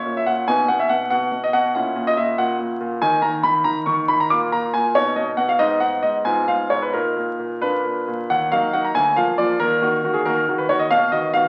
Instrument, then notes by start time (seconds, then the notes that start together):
grand piano
Already playing: C#4 E4 C#5
0.06 A#2
0.17 E5
0.26 A#2 F#5
0.48 B2 B3 D#4 G#5
0.68 B2 F#5
0.80 E5
0.89 B2 F#5
1.10 B2 F#5
1.32 B2
1.44 D#5
1.53 B2 F#5
1.75 A#2 C#4 E4 F#5
1.96 A#2
2.07 D#5
2.17 A#2 E5
2.38 A#2 F#5
2.59 A#2
2.80 A#2
3.02 D#3 A#3 D#4 G#5
3.22 D#3 A#5
3.43 D#3 B5
3.64 D#3 A#5
3.86 D#3 C#6
4.08 D#3 B5
4.20 A#5
4.30 A#2 A#3 F4 D6
4.52 A#2 A#5
4.74 A#2 G#5
4.95 B2 B3 D#4 C#5
5.16 B2 D#5
5.37 B2 F#5
5.49 F5
5.59 G#2 B3 D#4 D#5
5.80 G#2 F#5
6.03 G#2 D#5
6.25 G#2 B3 F4 G#5
6.48 G#2 F5
6.70 G#2 C#5
6.82 B4
6.93 A#2 A#3 D#4 A#4
7.16 A#2
7.39 A#2
7.62 A#2 A#3 D4 B4
7.84 A#2
8.07 A#2
8.30 D#2 F#5
8.52 F#3 A#3 D#4 F5
8.73 F#3 A#3 D#4 F#5
8.85 A#5
8.95 D2 G#5
9.16 F3 A#3 F4 F5
9.38 F3 A#3 F4 D5
9.60 D#2 A#4
9.82 D#3 A#3 F#4
10.04 D#3 A#3 F#4
10.14 G#4
10.25 D#3 A#3 F#4 A#4
10.48 D#3 A#3 F#4
10.58 B4
10.69 D#3 A#3 F#4 C#5
10.79 D#5
10.91 B2 F5
11.12 D#3 B3 F#4 D#5
11.33 D#3 B3 F#4 F5